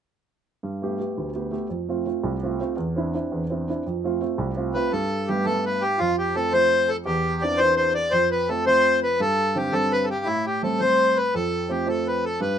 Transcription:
0.63 grand piano G2
0.82 grand piano A3 B3 G4
0.99 grand piano A3 B3 G4
1.18 grand piano D2
1.35 grand piano A3 B3 G4
1.51 grand piano A3 B3 G4
1.70 grand piano F2
1.89 grand piano A3 C4 F4
2.06 grand piano A3 C4 F4
2.23 grand piano C2
2.43 grand piano A3 C4 F4
2.60 grand piano A3 C4 F4
2.77 grand piano E2
2.96 grand piano C4 D4 E4
3.14 grand piano C4 D4 E4
3.32 grand piano E2
3.50 grand piano C4 D4 E4
3.69 grand piano C4 D4 E4
3.86 grand piano F2
4.04 grand piano A3 C4 F4
4.21 grand piano A3 C4 F4
4.38 grand piano C2
4.56 grand piano A3 C4 F4
4.74 grand piano A3 C4 F4, accordion B4
4.92 grand piano G2, accordion A4
5.28 grand piano G3 A3 B3, accordion G4
5.45 grand piano G3 A3 B3, accordion A4
5.66 accordion B4
5.82 accordion G4
5.98 grand piano F2, accordion F4
6.18 accordion G4
6.35 grand piano F3 A3 C4, accordion A4
6.53 grand piano F3 A3 C4, accordion C5
6.89 accordion A4
7.06 grand piano E2, accordion G4
7.42 grand piano E3 C4 D4, accordion D5
7.57 grand piano E3 C4 D4, accordion C5
7.76 accordion C5
7.95 accordion D5
8.11 grand piano F2, accordion C5
8.31 accordion B4
8.49 grand piano F3 A3 C4, accordion A4
8.65 grand piano F3 A3 C4, accordion C5
9.03 accordion B4
9.20 grand piano G2, accordion A4
9.55 grand piano D3 G3 C4, accordion G4
9.72 grand piano D3 G3 C4, accordion A4
9.92 accordion B4
10.04 accordion A4
10.10 accordion G4
10.25 grand piano A2, accordion E4
10.46 accordion G4
10.63 grand piano G3 A3 C4, accordion A4
10.80 grand piano G3 A3 C4, accordion C5
11.17 accordion B4
11.34 grand piano F2, accordion A4
11.69 grand piano F3 A3 C4, accordion G4
11.86 grand piano F3 A3 C4, accordion A4
12.08 accordion B4
12.25 accordion A4
12.40 grand piano G2, accordion B4

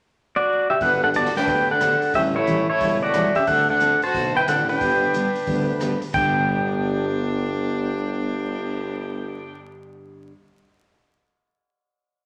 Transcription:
0.36 pedal steel guitar F#4 D5
0.70 pedal steel guitar G4 E5
0.80 tuba G1, steel-string acoustic guitar D3 F#3 B3 D4 G4, fiddle D4, pedal steel guitar B4 F#5, kick, open hi-hat
1.03 fiddle D4, pedal steel guitar A4 F#5
1.13 steel-string acoustic guitar D3 F#3 B3 D4 G4, fiddle F#4, pedal steel guitar D5 A5, closed hi-hat
1.26 snare
1.35 fiddle D4, pedal steel guitar B4 G5, snare, open hi-hat
1.47 tuba D2, steel-string acoustic guitar D3 F#3 B3 D4 G4, kick, open hi-hat
1.69 fiddle D4, pedal steel guitar A4 F#5
1.80 steel-string acoustic guitar D3 F#3 B3 D4 G4, cross-stick, closed hi-hat
2.02 open hi-hat
2.13 tuba A1, steel-string acoustic guitar E3 G3 C#4 E4 A4, fiddle C#4, pedal steel guitar G4 E5, kick, open hi-hat
2.36 fiddle A3, pedal steel guitar E4 C#5
2.47 steel-string acoustic guitar E3 G3 C#4 E4 A4, closed hi-hat
2.70 fiddle A3, pedal steel guitar E4 C#5
2.80 tuba E1, steel-string acoustic guitar E3 G3 C#4 E4 A4, kick, open hi-hat
3.02 fiddle A3, pedal steel guitar F#4 D5
3.14 steel-string acoustic guitar E3 G3 C#4 E4 A4, cross-stick, closed hi-hat
3.35 fiddle C#4, pedal steel guitar G4 E5, open hi-hat
3.47 tuba D2, steel-string acoustic guitar D3 A3 C4 F#4 A4, fiddle D4, pedal steel guitar A4 F#5, kick, open hi-hat
3.70 fiddle D4, pedal steel guitar A4 F#5
3.80 steel-string acoustic guitar D3 A3 C4 F#4 A4, closed hi-hat
4.02 fiddle F#4, pedal steel guitar C5 A5, open hi-hat
4.14 tuba B1, steel-string acoustic guitar D3 A3 C4 F#4 A4, kick, open hi-hat
4.36 fiddle E4, pedal steel guitar B4 G5
4.47 tuba A1, steel-string acoustic guitar D3 A3 C4 F#4 A4, fiddle D4, pedal steel guitar A4 F#5, cross-stick, closed hi-hat
4.69 fiddle D4, pedal steel guitar B4 G5, open hi-hat
4.81 tuba G1, steel-string acoustic guitar D3 G3 B3 D4 G4, kick, open hi-hat
5.13 steel-string acoustic guitar D3 G3 B3 D4 G4, closed hi-hat
5.35 open hi-hat
5.46 tuba D2, steel-string acoustic guitar D3 G3 B3 D4 G4, kick, open hi-hat
5.80 steel-string acoustic guitar D3 G3 B3 D4 G4, cross-stick, closed hi-hat
6.02 open hi-hat
6.13 tuba G1, steel-string acoustic guitar G2 D3 G3 B3 D4 G4, fiddle D4, pedal steel guitar G5, kick, crash
6.35 cymbal swell

